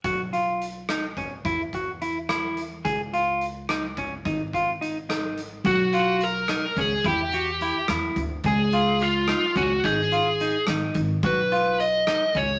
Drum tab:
HH |xxxxx|xxxxx|xxxxx|xxxxx|
SD |---r-|---r-|---r-|---r-|
BD |o---o|oo---|o---o|oo---|

HH |xxxxx|xxxxx|xxxxx|xxxxx|
SD |---r-|---r-|---r-|---r-|
BD |o---o|o---o|o---o|o---o|

HH |xxxxx|
SD |---r-|
BD |o---o|